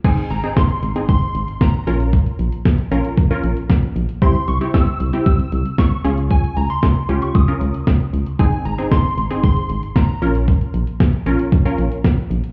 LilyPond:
<<
  \new Staff \with { instrumentName = "Synth bell" } { \time 4/4 \key aes \major \tempo 4 = 115 aes''8 bes''8 c'''4 c'''4 bes''8. r16 | r1 | c'''8 des'''8 e'''4 e'''4 des'''8. r16 | aes''8 bes''16 c'''4 des'''16 ees'''4 r4 |
aes''8 bes''8 c'''4 c'''4 bes''8. r16 | r1 | }
  \new Staff \with { instrumentName = "Synth pluck" } { \time 4/4 \key aes \major <c' ees' aes'>8 r16 <c' ees' aes'>8. r16 <c' ees' aes'>4. r16 <des' f' bes'>8~ | <des' f' bes'>4 r8 <des' f' bes'>8 r16 <des' f' bes'>4. r16 | <c' e' g'>8 r16 <c' e' g'>8. r16 <c' e' g'>4. r16 <des' f' aes'>8~ | <des' f' aes'>4 r8 <des' f' g'>8 r16 <des' f' bes'>4. r16 |
<c' ees' aes'>8 r16 <c' ees' aes'>8. r16 <c' ees' aes'>4. r16 <des' f' bes'>8~ | <des' f' bes'>4 r8 <des' f' bes'>8 r16 <des' f' bes'>4. r16 | }
  \new Staff \with { instrumentName = "FM bass" } { \clef bass \time 4/4 \key aes \major aes,,16 r16 aes,,16 r16 aes,,16 r16 aes,,16 r16 aes,,16 r16 aes,,16 r16 aes,,16 r16 bes,,8~ | bes,,16 r16 bes,,16 r16 bes,,16 r16 bes,,16 r16 bes,,16 r16 bes,,16 r16 bes,,16 r16 bes,,16 r16 | c,16 r16 c,16 r16 c,16 r16 c,16 r16 c,16 r16 c,16 r16 c,16 r16 des,8~ | des,16 r16 des,16 r16 des,16 r16 des,16 r16 des,16 r16 des,16 r16 des,16 r16 des,16 r16 |
aes,,16 r16 aes,,16 r16 aes,,16 r16 aes,,16 r16 aes,,16 r16 aes,,16 r16 aes,,16 r16 bes,,8~ | bes,,16 r16 bes,,16 r16 bes,,16 r16 bes,,16 r16 bes,,16 r16 bes,,16 r16 bes,,16 r16 bes,,16 r16 | }
  \new DrumStaff \with { instrumentName = "Drums" } \drummode { \time 4/4 <cymc hh bd>16 hh16 hh16 hh16 <hh bd sn>16 hh16 hh16 hh16 <hh bd>16 hh16 hh16 hh16 <hh bd sn>16 hh16 hh16 hh16 | <hh bd>16 hh16 hh16 hh16 <hh bd sn>16 hh16 hh16 hh16 <hh bd>16 hh16 hh16 hh16 <hh bd sn>16 hh16 hh16 hh16 | <hh bd>16 hh16 hh16 hh16 <hh bd sn>16 hh16 hh16 hh16 <hh bd>16 hh16 hh16 hh16 <hh bd sn>16 hh16 hh16 hh16 | <hh bd>16 hh16 hh16 hh16 <hh bd sn>16 hh16 hh16 hh16 <hh bd>16 hh16 hh16 hh16 <hh bd sn>16 hh16 hh16 hh16 |
<hh bd>16 hh16 hh16 hh16 <hh bd sn>16 hh16 hh16 hh16 <hh bd>16 hh16 hh16 hh16 <hh bd sn>16 hh16 hh16 hh16 | <hh bd>16 hh16 hh16 hh16 <hh bd sn>16 hh16 hh16 hh16 <hh bd>16 hh16 hh16 hh16 <hh bd sn>16 hh16 hh16 hh16 | }
>>